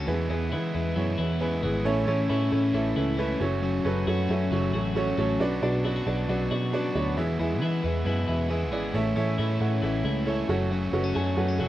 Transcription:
Already playing: A3 C#4 F#4
0.07 E2 B2 E3 G#3 B3 E4 G#4 B4
0.29 E2 E3 G#3 B3 E4 G#4 B4
0.50 E3 G#3 B3 E4 G#4 B4
0.74 E2 B3 E4 G#4 B4
0.95 E2 F#2 B2 E3 G#3 B3 E4 G#4 C#5
1.18 E2 B3 E4 G#4 B4
1.40 E3 G#3 B3 E4 G#4 B4
1.62 G#1 E3 G#3 B3 E4 G#4 B4
1.85 A1 A2 E3 A3 C#4 E4 A4 C#5
2.06 A1 A3 C#4 E4 A4 C#5
2.29 A2 E3 A3 C#4 E4 A4 C#5
2.51 A2 C#4 E4 A4 C#5
2.73 A1 A2 E3 A3 C#4 E4 A4 E5
2.96 C#2 C#4 E4 A4 B4
3.17 E3 A3 C#4 E4 A4 B4
3.40 F#1 F#2 F#3 A3 C#4 F#4 A4 C#5
3.62 F#2 C#3 F#3 A3 C#4 F#4
3.84 F#1 F#3 A3 C#4 F#4 A4 B4
4.07 F#2 F#3 A3 C#4 F#4 A4 C#5
4.29 F#2 C#4 F#4 A4 E5
4.51 F#1 F#2 C#3 F#3 A3 C#4 F#4 A4 C#5
4.73 A1 C#4 F#4 A4 C#5
4.95 F#3 A3 C#4 F#4 A4 C#5
5.17 A1 F#3 A3 C#4 F#4 A4 C#5
5.40 B1 B2 F#3 B3 D4 F#4 B4 D5
5.63 B1 D4 F#4 B4 D5
5.84 F#3 B3 D4 E4 F#4 B4 D5
5.96 F#4
6.07 B1 D4 F#4 B4 D5
6.28 B1 B2 F#3 B3 D4 F#4 B4 D5
6.51 B2 D4 F#4 B4 D5
6.72 F#3 B3 D4 F#4 B4 D5
6.95 D2 B3 D4 F#4 B4 C#5
7.16 E2 B2 E3 G#3 B3 E4 G#4 B4 E5
7.38 E2 E3 G#3 B3 E4 G#4 B4 E5
7.60 E3 G#3 B3 E4 G#4 B4 E5
7.83 E2 B3 E4 G#4 B4 E5
8.05 E2 F#2 B2 E3 G#3 B3 E4 G#4 B4 E5
8.28 E2 E4 G#4 B4 E5
8.49 E3 G#3 B3 E4 G#4 B4 E5
8.71 G#1 E3 G#3 B3 E4 G#4 B4 D5
8.94 A1 A2 E3 A3 C#4 E4 A4 C#5 E5
9.16 A1 A3 C#4 E4 A4 C#5 E5
9.38 A2 E3 A3 C#4 E4 A4 C#5 E5
9.60 A2 C#4 E4 A4 C#5 F#5
9.82 A1 A2 E3 A3 C#4 E4 A4 C#5 E5
10.04 C#2 E4 A4 C#5 E5
10.26 E3 A3 C#4 E4 A4 C#5 E5
10.49 F#1 F#2 F#3 A3 C#4 F#4 A4 C#5 F#5
10.71 F#2 C#3 F#3 A3 C#4 F#4
10.92 F#1 F#3 A3 B3 C#4 F#4 A4 C#5 F#5
11.04 C#4
11.14 F#2 F#3 A3 C#4 F#4 A4 C#5 G#5
11.37 F#2 B3 F#4 A4 C#5 F#5
11.48 C#4
11.58 F#1 F#2 C#3 F#3 A3 C#4 F#4 A4 C#5 F#5

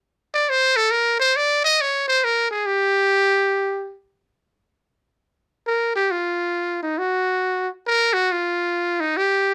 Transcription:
0.34 D5
0.50 C5
0.77 A4
0.91 A#4
1.20 C5
1.37 D5
1.65 D#5
1.81 C#5
2.08 C5
2.24 A#4
2.51 G#4
2.66 G4
5.67 A#4
5.96 G4
6.11 F4
6.83 D#4
6.98 F#4
7.87 A#4
8.14 F#4
8.32 F4
9.01 D#4
9.17 G4

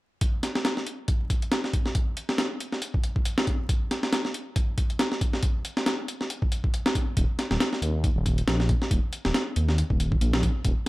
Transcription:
0.21 kick, closed hi-hat
0.43 snare, closed hi-hat
0.55 snare
0.65 snare, closed hi-hat
0.77 snare
0.87 closed hi-hat
1.08 kick, closed hi-hat
1.30 kick, closed hi-hat
1.42 closed hi-hat
1.52 snare, closed hi-hat
1.64 snare
1.73 kick, closed hi-hat
1.86 snare
1.95 kick, closed hi-hat
2.17 closed hi-hat
2.29 snare
2.38 snare, closed hi-hat
2.60 closed hi-hat
2.72 snare
2.82 closed hi-hat
2.94 kick
3.04 closed hi-hat
3.16 kick
3.25 closed hi-hat
3.38 snare
3.47 kick, closed hi-hat
3.69 kick, closed hi-hat
3.91 snare, closed hi-hat
4.03 snare
4.13 snare, closed hi-hat
4.25 snare
4.34 closed hi-hat
4.56 kick, closed hi-hat
4.78 kick, closed hi-hat
4.90 closed hi-hat
4.99 snare, closed hi-hat
5.12 snare
5.21 kick, closed hi-hat
5.33 snare
5.43 kick, closed hi-hat
5.65 closed hi-hat
5.77 snare
5.86 snare, closed hi-hat
6.08 closed hi-hat
6.21 snare
6.30 closed hi-hat
6.42 kick
6.52 closed hi-hat
6.64 kick
6.74 closed hi-hat
6.86 snare
6.95 kick, closed hi-hat
7.17 D#1, kick, closed hi-hat
7.39 snare, closed hi-hat
7.51 D#1, snare
7.60 snare, closed hi-hat
7.73 snare
7.82 D#2, closed hi-hat
8.04 kick, closed hi-hat
8.16 D#1
8.26 kick, closed hi-hat
8.38 closed hi-hat
8.47 A#1, snare, closed hi-hat
8.60 snare
8.69 kick, closed hi-hat
8.82 snare
8.91 D#1, kick, closed hi-hat
9.13 closed hi-hat
9.25 D#1, snare
9.34 snare, closed hi-hat
9.56 D#2, closed hi-hat
9.69 snare
9.78 closed hi-hat
9.90 D#1, kick
10.00 closed hi-hat
10.12 kick
10.21 A#1, closed hi-hat
10.33 snare
10.43 kick, closed hi-hat
10.65 D#1, kick, closed hi-hat

